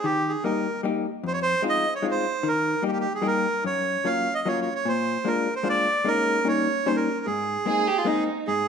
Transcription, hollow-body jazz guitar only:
0.04 D#3
0.44 G3 A#3 D#4 G4
0.83 G3 A#3 D#4 G4
1.24 F2
1.62 G#3 C4 D#4 F4
2.02 G#3 C4 D#4 F4
2.43 D#3
2.82 G3 A#3 D#4 G4
3.22 G3 A#3 D#4 G4
3.64 F#2
4.04 F#3 A#3 C#4 F4
4.45 F#3 A#3 C#4 F4
4.85 A#2
5.24 G#3 A#3 D4 F4
5.63 G#3 A#3 D4 F4
6.04 G#3 A#3 C#4 D#4
6.44 G3 A#3 C#4 D#4
6.86 G3 A#3 C#4 D#4
7.27 G#2
7.66 G#3 A#3 C4 D#4
8.05 G#3 A#3 C4 D#4
8.48 G#2

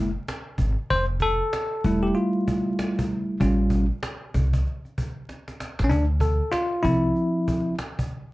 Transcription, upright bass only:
Already playing: F#1
0.58 G#1
0.91 F1
1.84 E1
3.41 A1
4.35 C2
5.79 A1
5.91 D2
6.84 C2

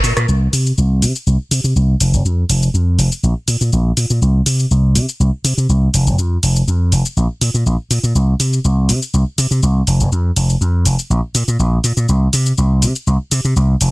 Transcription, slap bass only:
0.04 A#2
0.17 A#2
0.29 C2
0.53 C3
0.78 C2
1.02 C3
1.27 C2
1.51 C3
1.64 C3
1.76 C2
2.01 F1
2.13 F1
2.25 F2
2.49 F1
2.74 F2
2.98 F1
3.23 A#1
3.48 A#2
3.61 A#2
3.73 A#1
3.97 A#2
4.10 A#2
4.22 C2
4.46 C3
4.71 C2
4.96 C3
5.20 C2
5.45 C3
5.58 C3
5.69 C2
5.94 F1
6.07 F1
6.18 F2
6.43 F1
6.68 F2
6.92 F1
7.17 A#1
7.41 A#2
7.54 A#2
7.66 A#1
7.91 A#2
8.04 A#2
8.15 C2
8.40 C3
8.65 C2
8.89 C3
9.14 C2
9.38 C3
9.51 C3
9.63 C2
9.87 F1
10.00 F1
10.12 F2
10.37 F1
10.61 F2
10.86 F1
11.10 A#1
11.35 A#2
11.48 A#2
11.59 A#1
11.84 A#2
11.97 A#2
12.09 C2
12.33 C3
12.58 C2
12.83 C3
13.07 C2
13.32 C3
13.45 C3
13.56 C2
13.81 F1

